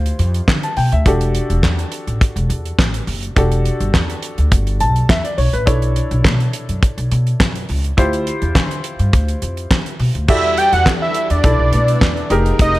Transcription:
Already playing: upright bass D2, grand piano E4 F4 G4 C5
0.06 closed hi-hat
0.19 upright bass F2, closed hi-hat
0.34 closed hi-hat
0.48 upright bass D3, kick, snare, clap
0.63 grand piano A5, closed hi-hat
0.77 upright bass B2, grand piano G5, open hi-hat
0.92 upright bass D2, grand piano E5, closed hi-hat
1.06 upright bass E1, grand piano D4 F#4 G4 A4, kick, closed hi-hat
1.21 closed hi-hat
1.35 closed hi-hat
1.50 upright bass E1, closed hi-hat
1.63 upright bass E2, kick, snare, clap
1.79 closed hi-hat
1.92 closed hi-hat
2.07 upright bass A1, closed hi-hat
2.21 kick, closed hi-hat
2.36 upright bass E1, closed hi-hat
2.50 upright bass E2, closed hi-hat
2.65 closed hi-hat
2.78 upright bass A1, kick, snare, clap
2.94 closed hi-hat
3.07 upright bass F#1, open hi-hat
3.23 closed hi-hat
3.36 upright bass E1, grand piano D4 F#4 G4 A4, kick, closed hi-hat
3.52 closed hi-hat
3.65 closed hi-hat
3.80 upright bass G1, closed hi-hat
3.94 upright bass E2, kick, snare, clap
4.10 closed hi-hat
4.22 closed hi-hat
4.38 upright bass D2, closed hi-hat
4.52 upright bass G1, kick, closed hi-hat
4.67 closed hi-hat
4.80 upright bass B1, grand piano A5, closed hi-hat
4.96 closed hi-hat
5.09 upright bass E2, grand piano E5, kick, snare, clap
5.24 grand piano D5, closed hi-hat
5.38 upright bass B1, grand piano C#5, open hi-hat
5.53 upright bass A1, grand piano B4, closed hi-hat
5.66 upright bass B1, grand piano D4 E4 A4 C#5, kick, closed hi-hat
5.82 closed hi-hat
5.96 closed hi-hat
6.11 upright bass B1, closed hi-hat
6.24 upright bass B2, kick, snare, clap
6.40 closed hi-hat
6.53 closed hi-hat
6.69 upright bass F#2, closed hi-hat
6.83 kick, closed hi-hat
6.98 upright bass B1, closed hi-hat
7.11 upright bass B2, closed hi-hat
7.27 closed hi-hat
7.40 upright bass F#2, kick, snare, clap
7.55 closed hi-hat
7.69 upright bass C#2, open hi-hat
7.84 closed hi-hat
7.97 upright bass D2, grand piano E4 F4 G4 C5, kick, closed hi-hat
8.13 closed hi-hat
8.27 closed hi-hat
8.42 upright bass E2, closed hi-hat
8.55 upright bass D3, kick, snare, clap
8.71 closed hi-hat
8.84 closed hi-hat
8.99 upright bass G2, closed hi-hat
9.13 upright bass D2, kick, closed hi-hat
9.28 closed hi-hat
9.42 upright bass F2, closed hi-hat
9.57 closed hi-hat
9.71 upright bass D3, kick, snare, clap
9.86 closed hi-hat
10.00 upright bass B2, open hi-hat
10.15 upright bass D2, closed hi-hat
10.28 upright bass E2, string machine E3 G3 D4 A4 F#5, grand piano F#4 G4 A4 D5, analog synth lead E5, kick, crash
10.57 analog synth lead G5, closed hi-hat
10.73 upright bass E2, analog synth lead F#5, closed hi-hat
10.86 upright bass E3, kick, snare, clap
11.02 analog synth lead E5
11.14 closed hi-hat
11.24 analog synth lead E5
11.30 upright bass E2, analog synth lead D5, closed hi-hat
11.44 upright bass B1, string machine A3 B3, grand piano D4 E4 A4 D5, kick, closed hi-hat
11.59 upright bass B1
11.73 upright bass B2, closed hi-hat
11.88 closed hi-hat
12.01 upright bass E2, kick, snare, clap
12.17 closed hi-hat
12.30 upright bass F1, string machine F3 D#4 A#4 G5, grand piano D#4 G4 G#4 A#4, closed hi-hat
12.46 closed hi-hat
12.59 upright bass F1, analog synth lead D#5, kick, closed hi-hat
12.75 closed hi-hat

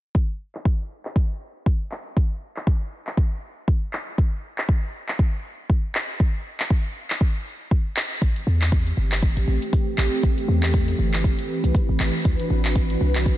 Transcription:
0.15 kick
0.55 clap
0.65 kick
1.05 clap
1.16 kick
1.66 kick
1.91 clap
2.17 kick
2.56 clap
2.67 kick
3.07 clap
3.17 kick
3.68 kick
3.93 clap
4.18 kick
4.58 clap
4.69 kick
5.08 clap
5.19 kick
5.70 kick
5.95 clap
6.20 kick
6.60 clap
6.70 kick
7.10 clap
7.21 kick
7.71 kick
7.96 clap
8.22 808-style bass A1, analog synth pad E3 A3 C4 G4 B4, kick, closed hi-hat
8.36 closed hi-hat
8.47 808-style bass E2
8.62 clap, closed hi-hat
8.72 kick, closed hi-hat
8.87 closed hi-hat
8.97 808-style bass G1
9.12 clap, closed hi-hat
9.22 kick, closed hi-hat
9.37 808-style bass A1, closed hi-hat
9.48 808-style bass A1
9.62 closed hi-hat
9.73 kick, closed hi-hat
9.98 808-style bass A1, clap
10.23 808-style bass A1, kick, closed hi-hat
10.38 closed hi-hat
10.48 808-style bass E2
10.63 clap, closed hi-hat
10.74 kick, closed hi-hat
10.88 closed hi-hat
10.99 808-style bass G1
11.13 clap, closed hi-hat
11.24 kick, closed hi-hat
11.39 closed hi-hat
11.64 808-style bass C2, closed hi-hat
11.75 kick, closed hi-hat
11.89 808-style bass A1
12.00 808-style bass A1, clap
12.25 808-style bass D2, analog synth pad C4 D4 F#4, kick, closed hi-hat
12.40 closed hi-hat
12.50 808-style bass A1
12.65 clap, closed hi-hat
12.76 kick, closed hi-hat
12.90 closed hi-hat
13.01 808-style bass C2
13.15 clap, closed hi-hat
13.26 kick, closed hi-hat

